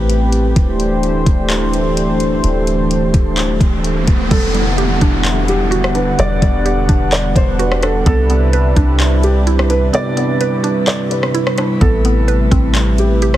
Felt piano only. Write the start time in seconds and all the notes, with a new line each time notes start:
4.31 A4
5.49 G4
5.95 B4
6.19 D5
7.12 D5
7.36 C5
7.60 B4
7.83 A4
8.07 A4
9.24 G4
9.70 B4
9.95 D5
10.88 D5
11.11 B4
11.81 A4
12.99 G4